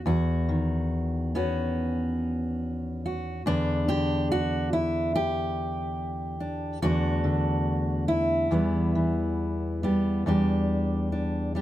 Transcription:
0.00 1.35 B3 soft
0.06 3.45 E2 medium
0.06 1.34 F#4 medium
0.49 3.41 D#3 medium
1.35 3.41 B3 medium
1.35 3.42 C#4 medium
1.35 3.04 F#4 medium
3.06 3.42 F#4 medium
3.46 6.81 E2 medium
3.46 3.87 D3 medium
3.46 6.78 B3 medium
3.46 4.73 D4 loud
3.88 6.82 D3 medium
3.88 4.30 G4 loud
4.32 4.73 F#4 loud
4.73 5.15 E4 medium
5.16 6.82 G4 loud
6.40 6.77 D4 soft
6.82 8.50 E2 medium
6.82 7.23 D3 soft
6.82 8.47 A3 medium
6.82 8.47 D4 medium
6.82 8.08 F#4 loud
7.24 8.51 D3 medium
8.08 9.84 E4 medium
8.51 10.25 E2 medium
8.51 8.94 E3 soft
8.51 9.82 G3 soft
8.51 9.83 B3 soft
8.95 10.21 E3 medium
9.83 10.26 G3 soft
9.83 10.27 B3 soft
9.83 10.22 G4 soft
10.26 11.62 E2 medium
10.26 11.54 G3 medium
10.26 11.12 D4 medium
10.26 11.55 G4 medium
11.12 11.55 D4 soft
11.55 11.62 G3 soft
11.55 11.62 D4 soft
11.55 11.62 G4 medium

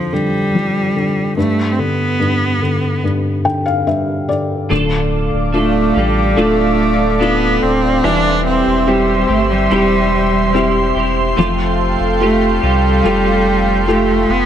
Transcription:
0.00 1.33 F2 soft
0.00 0.13 D3 soft
0.00 0.15 F3 medium
0.00 0.55 F3 soft
0.13 0.94 D3 soft
0.13 1.37 G3 medium
0.55 1.35 F3 soft
0.96 1.36 D3 soft
1.37 2.18 G2 soft
1.37 1.73 A3 medium
1.72 1.80 C4 medium
1.79 2.60 D3 soft
1.79 3.04 B3 medium
2.20 3.02 G2 soft
2.62 3.43 D3 soft
3.04 3.85 G2 soft
3.45 4.27 D3 soft
3.45 3.65 G5 soft
3.66 3.85 F5 medium
3.87 4.68 G2 soft
3.87 4.26 E5 soft
4.28 4.68 D3 soft
4.28 4.68 D5 soft
4.69 5.29 D1 medium
4.69 5.53 D3 medium
4.69 8.00 D3 medium
4.69 5.51 A3 medium
4.69 5.53 D4 medium
4.69 5.53 F4 medium
4.69 5.54 A4 medium
4.69 8.01 A4 medium
4.69 8.01 D5 medium
4.69 8.01 F5 medium
4.69 8.01 D6 medium
5.33 5.92 D1 medium
5.52 5.95 A3 soft
5.52 6.34 A3 soft
5.52 5.99 A3 medium
5.52 5.95 D4 medium
5.52 6.35 D4 soft
5.52 6.35 F4 soft
5.52 5.95 F4 soft
5.52 5.93 A4 medium
5.94 6.34 A1 medium
5.94 6.39 G3 medium
5.94 6.36 D4 soft
5.94 6.36 F4 soft
5.94 6.36 A4 medium
6.36 7.58 D1 medium
6.36 7.20 D3 medium
6.36 7.18 A3 medium
6.36 7.18 A3 soft
6.36 7.20 A3 medium
6.36 7.19 D4 medium
6.36 7.18 D4 soft
6.36 7.18 F4 soft
6.36 7.20 F4 medium
6.36 7.21 A4 medium
7.19 8.03 A3 medium
7.19 8.01 A3 soft
7.19 7.64 B3 medium
7.19 8.01 D4 soft
7.19 8.04 D4 soft
7.19 8.01 F4 soft
7.19 8.04 F4 medium
7.19 8.05 A4 medium
7.62 8.01 D1 medium
7.62 8.05 C4 medium
8.03 8.62 E1 medium
8.03 8.87 E3 medium
8.03 11.33 E3 medium
8.03 8.86 G3 medium
8.03 8.87 C4 medium
8.03 8.46 D4 medium
8.03 8.87 E4 medium
8.03 11.34 G4 medium
8.03 8.89 G4 medium
8.03 11.34 C5 medium
8.03 11.34 E5 medium
8.03 14.46 C6 medium
8.46 8.89 C4 medium
8.67 9.25 E1 medium
8.86 9.28 G3 soft
8.86 9.30 G3 medium
8.86 9.68 C4 soft
8.86 9.29 C4 medium
8.86 9.68 E4 soft
8.86 9.28 E4 medium
8.86 9.68 G4 soft
8.86 9.27 G4 medium
9.28 9.68 G1 medium
9.28 9.49 A3 medium
9.28 9.70 C4 soft
9.28 9.70 E4 soft
9.28 9.70 G4 medium
9.50 10.92 G3 medium
9.70 10.92 E1 loud
9.70 10.54 E3 medium
9.70 10.52 G3 medium
9.70 10.52 C4 soft
9.70 10.54 C4 medium
9.70 10.52 E4 soft
9.70 10.54 E4 medium
9.70 10.52 G4 medium
9.70 10.55 G4 medium
10.53 10.95 G3 medium
10.53 10.96 C4 medium
10.53 11.35 C4 soft
10.53 11.35 E4 soft
10.53 10.95 E4 medium
10.53 11.35 G4 soft
10.53 10.94 G4 medium
10.95 11.34 E1 medium
10.95 11.36 C4 soft
10.95 11.37 E4 soft
10.95 11.37 G4 soft
11.36 11.96 F1 medium
11.36 12.20 F3 medium
11.36 14.46 F3 medium
11.36 12.18 A3 medium
11.36 12.20 C4 medium
11.36 12.21 F4 medium
11.36 12.22 G4 medium
11.36 14.46 A4 medium
11.36 14.46 F5 medium
11.36 14.46 G5 medium
12.00 12.58 F1 medium
12.20 12.62 A3 medium
12.20 12.60 A3 medium
12.20 12.62 C4 medium
12.20 13.02 F4 soft
12.20 12.61 F4 medium
12.20 13.02 G4 soft
12.20 12.60 G4 medium
12.20 13.02 A4 soft
12.61 13.01 C2 medium
12.61 13.84 G3 medium
12.61 13.03 C4 soft
12.61 13.04 F4 soft
12.61 13.03 G4 medium
13.03 14.25 F1 medium
13.03 13.87 F3 medium
13.03 13.85 A3 medium
13.03 13.88 C4 medium
13.03 13.85 F4 soft
13.03 13.87 F4 medium
13.03 13.85 G4 soft
13.03 13.89 G4 medium
13.03 13.85 A4 soft
13.86 14.46 A3 medium
13.86 14.32 A3 medium
13.86 14.46 F4 soft
13.86 14.46 F4 medium
13.86 14.46 G4 soft
13.86 14.46 G4 medium
13.86 14.46 A4 medium
14.29 14.46 F1 medium
14.29 14.46 B3 medium

